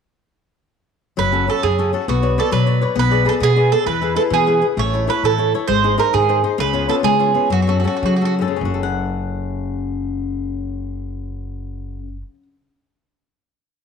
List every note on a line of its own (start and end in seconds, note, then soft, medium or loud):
1.17 1.47 F#1 medium
1.17 1.47 F#3 medium
1.17 1.49 B4 medium
1.32 1.47 C#4 soft
1.32 1.48 F#4 soft
1.32 1.48 A4 soft
1.48 1.72 C#4 soft
1.48 1.73 F#4 soft
1.48 1.64 A4 medium
1.48 1.73 A4 soft
1.63 1.92 F#2 medium
1.63 1.93 C#3 soft
1.63 1.91 G#4 medium
1.78 1.92 C#4 soft
1.78 1.92 F#4 soft
1.78 1.93 A4 soft
1.93 2.05 C#4 soft
1.93 2.05 F#4 soft
1.93 2.05 A4 soft
2.08 2.37 B1 medium
2.08 2.37 B3 medium
2.08 2.39 F#4 medium
2.23 2.37 B4 soft
2.23 2.37 C#5 soft
2.23 2.37 D5 soft
2.38 2.52 A4 medium
2.38 2.62 B4 soft
2.38 2.62 C#5 soft
2.38 2.62 D5 medium
2.51 2.81 B2 medium
2.51 2.81 F#3 medium
2.51 2.83 B4 medium
2.66 2.80 B4 soft
2.66 2.81 C#5 soft
2.66 2.81 D5 soft
2.81 2.93 B4 soft
2.81 2.94 C#5 soft
2.81 2.94 D5 soft
2.95 3.25 B1 medium
2.95 3.25 B3 medium
2.95 3.26 B4 medium
3.11 3.24 G#4 soft
3.11 3.24 B4 soft
3.11 3.25 D5 medium
3.25 3.50 G#4 soft
3.25 3.34 A4 medium
3.25 3.50 B4 soft
3.25 3.50 D5 soft
3.40 3.70 B2 medium
3.40 3.70 B3 medium
3.40 3.70 G#4 loud
3.56 3.71 G#4 soft
3.56 3.71 B4 soft
3.56 3.71 D5 soft
3.72 3.84 G#4 soft
3.72 3.86 A4 medium
3.72 3.84 B4 soft
3.72 3.84 D5 soft
3.86 4.15 E2 medium
3.86 4.16 E3 medium
3.86 4.15 B4 medium
4.01 4.15 E4 soft
4.01 4.15 G#4 soft
4.01 4.16 B4 soft
4.16 4.41 E4 soft
4.16 4.41 G#4 soft
4.16 4.21 A4 medium
4.16 4.41 B4 medium
4.30 4.61 B2 medium
4.30 4.61 E3 medium
4.30 4.64 G#4 medium
4.47 4.60 E4 soft
4.47 4.61 G#4 soft
4.47 4.61 B4 soft
4.62 4.74 E4 soft
4.62 4.74 G#4 soft
4.62 4.74 B4 soft
4.77 5.07 A1 medium
4.77 5.07 A3 medium
4.77 5.09 C#5 medium
4.93 5.06 E4 soft
4.93 5.07 A4 soft
4.93 5.08 C#5 soft
5.07 5.32 E4 soft
5.07 5.32 A4 soft
5.07 5.23 B4 medium
5.07 5.33 C#5 soft
5.23 5.52 A2 medium
5.23 5.53 E3 soft
5.23 5.52 A4 medium
5.38 5.53 E4 soft
5.38 5.54 A4 soft
5.38 5.54 C#5 soft
5.54 5.66 E4 soft
5.54 5.66 A4 soft
5.54 5.66 C#5 soft
5.68 5.98 G#1 medium
5.68 5.98 G#3 medium
5.68 5.96 C5 medium
5.84 5.97 D#4 soft
5.84 5.97 G#4 soft
5.84 5.97 C5 soft
5.98 6.22 D#4 soft
5.98 6.22 G#4 soft
5.98 6.13 A#4 medium
5.98 6.22 C5 medium
6.13 6.43 G#2 medium
6.13 6.43 D#3 medium
6.13 6.42 G#4 medium
6.29 6.43 D#4 soft
6.29 6.42 G#4 soft
6.29 6.43 C5 soft
6.44 6.55 D#4 soft
6.44 6.55 G#4 soft
6.44 6.56 C5 soft
6.58 6.88 C#2 medium
6.58 6.88 C#3 medium
6.58 6.88 B4 medium
6.73 6.88 B3 soft
6.73 6.88 C#4 soft
6.73 6.88 F4 medium
6.89 7.14 B3 soft
6.89 7.14 C#4 soft
6.89 7.14 F4 soft
6.89 6.94 A4 medium
7.03 7.34 C#3 medium
7.03 7.34 G#3 medium
7.03 7.48 G#4 medium
7.19 7.33 B3 soft
7.19 7.34 C#4 soft
7.19 7.34 F4 soft
7.34 7.47 B3 soft
7.34 7.48 C#4 soft
7.34 7.48 F4 soft
7.50 7.84 F#2 medium
7.50 7.84 F#3 medium
7.50 7.60 F#4 medium
7.62 7.68 F#4 soft
7.67 7.83 C#4 soft
7.67 7.83 F#4 soft
7.67 7.77 F#4 soft
7.67 7.84 A4 medium
7.80 7.87 F#4 soft
7.84 8.14 C#4 soft
7.84 8.14 F#4 soft
7.84 7.95 F#4 soft
7.84 8.15 A4 soft
7.97 8.04 F#4 soft
8.03 8.40 C#3 medium
8.03 8.41 F#3 medium
8.03 8.14 F#4 medium
8.16 8.24 F#4 soft
8.21 8.40 C#4 soft
8.21 8.40 F#4 soft
8.21 8.41 A4 soft
8.25 8.33 F#4 medium
8.39 11.98 F#2 soft
8.39 8.55 C#4 soft
8.39 8.58 A4 soft
8.48 12.07 C#3 soft
8.56 12.16 C#4 soft
8.61 12.21 F#1 medium
8.65 8.83 F#4 soft
8.74 12.34 A4 soft
8.83 12.42 F#5 medium